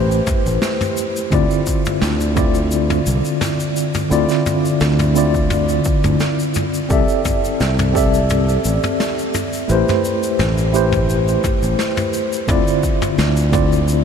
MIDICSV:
0, 0, Header, 1, 4, 480
1, 0, Start_track
1, 0, Tempo, 697674
1, 910, Time_signature, 4, 2, 24, 8
1, 9660, End_track
2, 0, Start_track
2, 0, Title_t, "Tine electric piano"
2, 0, Program_c, 0, 4
2, 0, Control_c, 0, 64, 127
2, 0, Note_on_c, 0, 57, 85
2, 0, Note_on_c, 0, 64, 81
2, 0, Note_on_c, 0, 67, 85
2, 0, Note_on_c, 0, 71, 83
2, 0, Note_on_c, 0, 72, 99
2, 876, Note_off_c, 0, 57, 0
2, 880, Note_off_c, 0, 64, 0
2, 883, Note_off_c, 0, 67, 0
2, 887, Note_off_c, 0, 71, 0
2, 889, Note_off_c, 0, 72, 0
2, 898, Note_on_c, 0, 50, 98
2, 903, Note_on_c, 0, 60, 93
2, 910, Note_on_c, 0, 64, 89
2, 917, Note_on_c, 0, 65, 90
2, 920, Control_c, 0, 64, 0
2, 922, Note_on_c, 0, 74, 111
2, 1056, Control_c, 0, 64, 127
2, 1597, Note_off_c, 0, 50, 0
2, 1600, Note_off_c, 0, 60, 0
2, 1603, Note_off_c, 0, 64, 0
2, 1607, Note_off_c, 0, 65, 0
2, 1609, Note_off_c, 0, 74, 0
2, 1618, Note_on_c, 0, 50, 84
2, 1624, Note_on_c, 0, 60, 82
2, 1630, Note_on_c, 0, 64, 84
2, 1638, Note_on_c, 0, 65, 82
2, 1642, Note_on_c, 0, 74, 99
2, 2797, Note_off_c, 0, 50, 0
2, 2800, Note_off_c, 0, 60, 0
2, 2803, Note_off_c, 0, 64, 0
2, 2807, Note_off_c, 0, 65, 0
2, 2809, Note_off_c, 0, 74, 0
2, 2814, Note_on_c, 0, 50, 102
2, 2821, Note_on_c, 0, 60, 87
2, 2827, Note_on_c, 0, 64, 93
2, 2833, Note_on_c, 0, 65, 88
2, 2839, Note_on_c, 0, 74, 106
2, 3515, Note_off_c, 0, 50, 0
2, 3519, Note_off_c, 0, 60, 0
2, 3522, Note_off_c, 0, 64, 0
2, 3525, Note_off_c, 0, 65, 0
2, 3528, Note_off_c, 0, 74, 0
2, 3537, Note_on_c, 0, 50, 89
2, 3543, Note_on_c, 0, 60, 78
2, 3550, Note_on_c, 0, 64, 78
2, 3555, Note_on_c, 0, 65, 77
2, 3562, Note_on_c, 0, 74, 103
2, 4717, Note_off_c, 0, 50, 0
2, 4720, Note_off_c, 0, 60, 0
2, 4723, Note_off_c, 0, 64, 0
2, 4726, Note_off_c, 0, 65, 0
2, 4729, Note_off_c, 0, 74, 0
2, 4740, Note_on_c, 0, 60, 94
2, 4745, Note_on_c, 0, 67, 88
2, 4752, Note_on_c, 0, 69, 91
2, 4758, Control_c, 0, 64, 0
2, 4759, Note_on_c, 0, 74, 92
2, 4765, Note_on_c, 0, 76, 104
2, 4874, Control_c, 0, 64, 127
2, 5438, Note_off_c, 0, 60, 0
2, 5441, Note_off_c, 0, 67, 0
2, 5444, Note_off_c, 0, 69, 0
2, 5448, Note_off_c, 0, 74, 0
2, 5451, Note_off_c, 0, 76, 0
2, 5459, Note_on_c, 0, 60, 87
2, 5467, Note_on_c, 0, 67, 81
2, 5473, Note_on_c, 0, 69, 80
2, 5479, Note_on_c, 0, 74, 82
2, 5486, Note_on_c, 0, 76, 94
2, 6411, Note_off_c, 0, 60, 0
2, 6415, Note_off_c, 0, 67, 0
2, 6418, Note_off_c, 0, 69, 0
2, 6421, Note_off_c, 0, 74, 0
2, 6425, Note_off_c, 0, 76, 0
2, 6439, Control_c, 0, 64, 0
2, 6568, Control_c, 0, 64, 127
2, 6659, Note_on_c, 0, 57, 104
2, 6666, Note_on_c, 0, 64, 89
2, 6672, Note_on_c, 0, 67, 87
2, 6679, Note_on_c, 0, 71, 90
2, 6684, Note_on_c, 0, 72, 110
2, 7358, Note_off_c, 0, 57, 0
2, 7361, Note_off_c, 0, 64, 0
2, 7364, Note_off_c, 0, 67, 0
2, 7368, Note_off_c, 0, 71, 0
2, 7370, Note_off_c, 0, 72, 0
2, 7380, Note_on_c, 0, 57, 88
2, 7386, Note_on_c, 0, 64, 81
2, 7393, Note_on_c, 0, 67, 85
2, 7398, Note_on_c, 0, 71, 81
2, 7405, Note_on_c, 0, 72, 105
2, 8558, Note_off_c, 0, 57, 0
2, 8561, Note_off_c, 0, 64, 0
2, 8565, Note_off_c, 0, 67, 0
2, 8567, Note_off_c, 0, 71, 0
2, 8571, Note_off_c, 0, 72, 0
2, 8580, Note_on_c, 0, 50, 98
2, 8586, Note_on_c, 0, 60, 93
2, 8591, Note_on_c, 0, 64, 93
2, 8598, Note_on_c, 0, 65, 94
2, 8599, Control_c, 0, 64, 0
2, 8606, Note_on_c, 0, 74, 105
2, 8720, Control_c, 0, 64, 127
2, 9278, Note_off_c, 0, 50, 0
2, 9281, Note_off_c, 0, 60, 0
2, 9284, Note_off_c, 0, 64, 0
2, 9287, Note_off_c, 0, 65, 0
2, 9291, Note_off_c, 0, 74, 0
2, 9296, Note_on_c, 0, 50, 86
2, 9303, Note_on_c, 0, 60, 86
2, 9310, Note_on_c, 0, 64, 81
2, 9318, Note_on_c, 0, 65, 85
2, 9324, Note_on_c, 0, 74, 103
2, 9660, Note_off_c, 0, 50, 0
2, 9660, Note_off_c, 0, 60, 0
2, 9660, Note_off_c, 0, 64, 0
2, 9660, Note_off_c, 0, 65, 0
2, 9660, Note_off_c, 0, 74, 0
2, 9660, End_track
3, 0, Start_track
3, 0, Title_t, "Fingered electric bass"
3, 0, Program_c, 1, 33
3, 0, Note_on_c, 1, 33, 106
3, 133, Note_off_c, 1, 33, 0
3, 317, Note_on_c, 1, 33, 99
3, 394, Note_off_c, 1, 33, 0
3, 910, Note_on_c, 1, 38, 100
3, 997, Note_off_c, 1, 38, 0
3, 1389, Note_on_c, 1, 38, 105
3, 2053, Note_off_c, 1, 38, 0
3, 2110, Note_on_c, 1, 36, 87
3, 2197, Note_off_c, 1, 36, 0
3, 2829, Note_on_c, 1, 38, 100
3, 2917, Note_off_c, 1, 38, 0
3, 3310, Note_on_c, 1, 38, 109
3, 3973, Note_off_c, 1, 38, 0
3, 4159, Note_on_c, 1, 38, 95
3, 4235, Note_off_c, 1, 38, 0
3, 4750, Note_on_c, 1, 36, 100
3, 4837, Note_off_c, 1, 36, 0
3, 5231, Note_on_c, 1, 36, 104
3, 5894, Note_off_c, 1, 36, 0
3, 5953, Note_on_c, 1, 33, 84
3, 6039, Note_off_c, 1, 33, 0
3, 6671, Note_on_c, 1, 33, 100
3, 6758, Note_off_c, 1, 33, 0
3, 7151, Note_on_c, 1, 33, 106
3, 7813, Note_off_c, 1, 33, 0
3, 7999, Note_on_c, 1, 33, 106
3, 8075, Note_off_c, 1, 33, 0
3, 8590, Note_on_c, 1, 38, 99
3, 8677, Note_off_c, 1, 38, 0
3, 9070, Note_on_c, 1, 38, 111
3, 9660, Note_off_c, 1, 38, 0
3, 9660, End_track
4, 0, Start_track
4, 0, Title_t, "Drums"
4, 78, Note_on_c, 9, 82, 42
4, 147, Note_off_c, 9, 82, 0
4, 185, Note_on_c, 9, 45, 74
4, 187, Note_on_c, 9, 82, 79
4, 190, Note_on_c, 9, 36, 101
4, 253, Note_off_c, 9, 45, 0
4, 256, Note_off_c, 9, 82, 0
4, 258, Note_off_c, 9, 36, 0
4, 320, Note_on_c, 9, 82, 48
4, 389, Note_off_c, 9, 82, 0
4, 425, Note_on_c, 9, 38, 97
4, 429, Note_on_c, 9, 82, 68
4, 494, Note_off_c, 9, 38, 0
4, 498, Note_off_c, 9, 82, 0
4, 555, Note_on_c, 9, 45, 67
4, 561, Note_on_c, 9, 82, 40
4, 624, Note_off_c, 9, 45, 0
4, 629, Note_off_c, 9, 82, 0
4, 668, Note_on_c, 9, 82, 77
4, 737, Note_off_c, 9, 82, 0
4, 802, Note_on_c, 9, 82, 49
4, 871, Note_off_c, 9, 82, 0
4, 908, Note_on_c, 9, 45, 80
4, 909, Note_on_c, 9, 36, 116
4, 910, Note_on_c, 9, 82, 58
4, 976, Note_off_c, 9, 45, 0
4, 978, Note_off_c, 9, 36, 0
4, 979, Note_off_c, 9, 82, 0
4, 1036, Note_on_c, 9, 82, 41
4, 1105, Note_off_c, 9, 82, 0
4, 1147, Note_on_c, 9, 82, 91
4, 1149, Note_on_c, 9, 36, 65
4, 1216, Note_off_c, 9, 82, 0
4, 1218, Note_off_c, 9, 36, 0
4, 1277, Note_on_c, 9, 82, 55
4, 1284, Note_on_c, 9, 45, 72
4, 1346, Note_off_c, 9, 82, 0
4, 1353, Note_off_c, 9, 45, 0
4, 1386, Note_on_c, 9, 38, 104
4, 1390, Note_on_c, 9, 82, 67
4, 1455, Note_off_c, 9, 38, 0
4, 1459, Note_off_c, 9, 82, 0
4, 1517, Note_on_c, 9, 82, 43
4, 1586, Note_off_c, 9, 82, 0
4, 1628, Note_on_c, 9, 45, 72
4, 1630, Note_on_c, 9, 36, 118
4, 1630, Note_on_c, 9, 82, 88
4, 1697, Note_off_c, 9, 45, 0
4, 1698, Note_off_c, 9, 36, 0
4, 1699, Note_off_c, 9, 82, 0
4, 1751, Note_on_c, 9, 82, 50
4, 1820, Note_off_c, 9, 82, 0
4, 1867, Note_on_c, 9, 82, 69
4, 1936, Note_off_c, 9, 82, 0
4, 1996, Note_on_c, 9, 45, 79
4, 2000, Note_on_c, 9, 82, 43
4, 2065, Note_off_c, 9, 45, 0
4, 2068, Note_off_c, 9, 82, 0
4, 2109, Note_on_c, 9, 82, 97
4, 2178, Note_off_c, 9, 82, 0
4, 2236, Note_on_c, 9, 82, 52
4, 2305, Note_off_c, 9, 82, 0
4, 2346, Note_on_c, 9, 45, 69
4, 2348, Note_on_c, 9, 38, 108
4, 2351, Note_on_c, 9, 82, 66
4, 2415, Note_off_c, 9, 45, 0
4, 2417, Note_off_c, 9, 38, 0
4, 2420, Note_off_c, 9, 82, 0
4, 2476, Note_on_c, 9, 82, 40
4, 2545, Note_off_c, 9, 82, 0
4, 2591, Note_on_c, 9, 82, 84
4, 2660, Note_off_c, 9, 82, 0
4, 2714, Note_on_c, 9, 82, 55
4, 2715, Note_on_c, 9, 45, 81
4, 2783, Note_off_c, 9, 82, 0
4, 2784, Note_off_c, 9, 45, 0
4, 2831, Note_on_c, 9, 82, 59
4, 2900, Note_off_c, 9, 82, 0
4, 2952, Note_on_c, 9, 82, 39
4, 2959, Note_on_c, 9, 38, 32
4, 3020, Note_off_c, 9, 82, 0
4, 3027, Note_off_c, 9, 38, 0
4, 3070, Note_on_c, 9, 45, 81
4, 3072, Note_on_c, 9, 82, 91
4, 3139, Note_off_c, 9, 45, 0
4, 3141, Note_off_c, 9, 82, 0
4, 3201, Note_on_c, 9, 82, 48
4, 3270, Note_off_c, 9, 82, 0
4, 3308, Note_on_c, 9, 38, 95
4, 3309, Note_on_c, 9, 82, 56
4, 3377, Note_off_c, 9, 38, 0
4, 3378, Note_off_c, 9, 82, 0
4, 3434, Note_on_c, 9, 45, 72
4, 3436, Note_on_c, 9, 82, 43
4, 3503, Note_off_c, 9, 45, 0
4, 3505, Note_off_c, 9, 82, 0
4, 3550, Note_on_c, 9, 82, 93
4, 3619, Note_off_c, 9, 82, 0
4, 3678, Note_on_c, 9, 36, 64
4, 3679, Note_on_c, 9, 82, 51
4, 3747, Note_off_c, 9, 36, 0
4, 3747, Note_off_c, 9, 82, 0
4, 3786, Note_on_c, 9, 45, 82
4, 3789, Note_on_c, 9, 82, 66
4, 3855, Note_off_c, 9, 45, 0
4, 3858, Note_off_c, 9, 82, 0
4, 3914, Note_on_c, 9, 82, 45
4, 3983, Note_off_c, 9, 82, 0
4, 4023, Note_on_c, 9, 82, 91
4, 4030, Note_on_c, 9, 36, 99
4, 4092, Note_off_c, 9, 82, 0
4, 4098, Note_off_c, 9, 36, 0
4, 4156, Note_on_c, 9, 45, 71
4, 4157, Note_on_c, 9, 82, 48
4, 4224, Note_off_c, 9, 45, 0
4, 4226, Note_off_c, 9, 82, 0
4, 4267, Note_on_c, 9, 82, 62
4, 4268, Note_on_c, 9, 38, 95
4, 4336, Note_off_c, 9, 82, 0
4, 4337, Note_off_c, 9, 38, 0
4, 4399, Note_on_c, 9, 82, 41
4, 4468, Note_off_c, 9, 82, 0
4, 4504, Note_on_c, 9, 82, 82
4, 4513, Note_on_c, 9, 45, 80
4, 4573, Note_off_c, 9, 82, 0
4, 4582, Note_off_c, 9, 45, 0
4, 4638, Note_on_c, 9, 82, 53
4, 4706, Note_off_c, 9, 82, 0
4, 4750, Note_on_c, 9, 36, 122
4, 4750, Note_on_c, 9, 82, 60
4, 4819, Note_off_c, 9, 36, 0
4, 4819, Note_off_c, 9, 82, 0
4, 4874, Note_on_c, 9, 82, 43
4, 4943, Note_off_c, 9, 82, 0
4, 4990, Note_on_c, 9, 45, 75
4, 4990, Note_on_c, 9, 82, 87
4, 4991, Note_on_c, 9, 36, 64
4, 5058, Note_off_c, 9, 45, 0
4, 5059, Note_off_c, 9, 36, 0
4, 5059, Note_off_c, 9, 82, 0
4, 5122, Note_on_c, 9, 82, 53
4, 5191, Note_off_c, 9, 82, 0
4, 5234, Note_on_c, 9, 38, 85
4, 5234, Note_on_c, 9, 82, 60
4, 5303, Note_off_c, 9, 38, 0
4, 5303, Note_off_c, 9, 82, 0
4, 5360, Note_on_c, 9, 82, 37
4, 5361, Note_on_c, 9, 45, 80
4, 5429, Note_off_c, 9, 82, 0
4, 5430, Note_off_c, 9, 45, 0
4, 5471, Note_on_c, 9, 36, 109
4, 5479, Note_on_c, 9, 82, 82
4, 5540, Note_off_c, 9, 36, 0
4, 5547, Note_off_c, 9, 82, 0
4, 5599, Note_on_c, 9, 82, 52
4, 5668, Note_off_c, 9, 82, 0
4, 5710, Note_on_c, 9, 82, 54
4, 5713, Note_on_c, 9, 45, 77
4, 5779, Note_off_c, 9, 82, 0
4, 5782, Note_off_c, 9, 45, 0
4, 5839, Note_on_c, 9, 82, 42
4, 5908, Note_off_c, 9, 82, 0
4, 5949, Note_on_c, 9, 82, 92
4, 6018, Note_off_c, 9, 82, 0
4, 6079, Note_on_c, 9, 45, 68
4, 6080, Note_on_c, 9, 82, 47
4, 6148, Note_off_c, 9, 45, 0
4, 6149, Note_off_c, 9, 82, 0
4, 6192, Note_on_c, 9, 38, 95
4, 6196, Note_on_c, 9, 82, 66
4, 6261, Note_off_c, 9, 38, 0
4, 6265, Note_off_c, 9, 82, 0
4, 6322, Note_on_c, 9, 82, 38
4, 6391, Note_off_c, 9, 82, 0
4, 6430, Note_on_c, 9, 45, 74
4, 6430, Note_on_c, 9, 82, 92
4, 6498, Note_off_c, 9, 45, 0
4, 6499, Note_off_c, 9, 82, 0
4, 6558, Note_on_c, 9, 82, 46
4, 6627, Note_off_c, 9, 82, 0
4, 6669, Note_on_c, 9, 82, 51
4, 6738, Note_off_c, 9, 82, 0
4, 6802, Note_on_c, 9, 82, 39
4, 6806, Note_on_c, 9, 45, 83
4, 6807, Note_on_c, 9, 38, 33
4, 6870, Note_off_c, 9, 82, 0
4, 6875, Note_off_c, 9, 45, 0
4, 6876, Note_off_c, 9, 38, 0
4, 6912, Note_on_c, 9, 82, 90
4, 6981, Note_off_c, 9, 82, 0
4, 7040, Note_on_c, 9, 82, 52
4, 7109, Note_off_c, 9, 82, 0
4, 7150, Note_on_c, 9, 38, 94
4, 7152, Note_on_c, 9, 45, 75
4, 7152, Note_on_c, 9, 82, 55
4, 7219, Note_off_c, 9, 38, 0
4, 7221, Note_off_c, 9, 45, 0
4, 7221, Note_off_c, 9, 82, 0
4, 7277, Note_on_c, 9, 82, 36
4, 7346, Note_off_c, 9, 82, 0
4, 7393, Note_on_c, 9, 82, 76
4, 7462, Note_off_c, 9, 82, 0
4, 7516, Note_on_c, 9, 45, 82
4, 7518, Note_on_c, 9, 36, 61
4, 7519, Note_on_c, 9, 82, 51
4, 7585, Note_off_c, 9, 45, 0
4, 7587, Note_off_c, 9, 36, 0
4, 7587, Note_off_c, 9, 82, 0
4, 7633, Note_on_c, 9, 82, 59
4, 7702, Note_off_c, 9, 82, 0
4, 7762, Note_on_c, 9, 82, 37
4, 7831, Note_off_c, 9, 82, 0
4, 7870, Note_on_c, 9, 36, 99
4, 7872, Note_on_c, 9, 45, 73
4, 7872, Note_on_c, 9, 82, 100
4, 7939, Note_off_c, 9, 36, 0
4, 7941, Note_off_c, 9, 45, 0
4, 7941, Note_off_c, 9, 82, 0
4, 8000, Note_on_c, 9, 82, 47
4, 8069, Note_off_c, 9, 82, 0
4, 8110, Note_on_c, 9, 38, 97
4, 8116, Note_on_c, 9, 82, 58
4, 8179, Note_off_c, 9, 38, 0
4, 8185, Note_off_c, 9, 82, 0
4, 8237, Note_on_c, 9, 45, 76
4, 8239, Note_on_c, 9, 82, 42
4, 8306, Note_off_c, 9, 45, 0
4, 8307, Note_off_c, 9, 82, 0
4, 8349, Note_on_c, 9, 82, 74
4, 8418, Note_off_c, 9, 82, 0
4, 8482, Note_on_c, 9, 82, 55
4, 8551, Note_off_c, 9, 82, 0
4, 8590, Note_on_c, 9, 36, 106
4, 8590, Note_on_c, 9, 82, 55
4, 8591, Note_on_c, 9, 45, 90
4, 8659, Note_off_c, 9, 36, 0
4, 8659, Note_off_c, 9, 45, 0
4, 8659, Note_off_c, 9, 82, 0
4, 8721, Note_on_c, 9, 82, 40
4, 8790, Note_off_c, 9, 82, 0
4, 8830, Note_on_c, 9, 36, 65
4, 8831, Note_on_c, 9, 82, 90
4, 8899, Note_off_c, 9, 36, 0
4, 8899, Note_off_c, 9, 82, 0
4, 8957, Note_on_c, 9, 45, 86
4, 8961, Note_on_c, 9, 82, 46
4, 9026, Note_off_c, 9, 45, 0
4, 9029, Note_off_c, 9, 82, 0
4, 9073, Note_on_c, 9, 38, 93
4, 9074, Note_on_c, 9, 82, 60
4, 9142, Note_off_c, 9, 38, 0
4, 9143, Note_off_c, 9, 82, 0
4, 9197, Note_on_c, 9, 82, 36
4, 9265, Note_off_c, 9, 82, 0
4, 9310, Note_on_c, 9, 36, 106
4, 9310, Note_on_c, 9, 45, 78
4, 9312, Note_on_c, 9, 82, 80
4, 9379, Note_off_c, 9, 36, 0
4, 9379, Note_off_c, 9, 45, 0
4, 9381, Note_off_c, 9, 82, 0
4, 9442, Note_on_c, 9, 82, 48
4, 9511, Note_off_c, 9, 82, 0
4, 9551, Note_on_c, 9, 82, 62
4, 9620, Note_off_c, 9, 82, 0
4, 9660, End_track
0, 0, End_of_file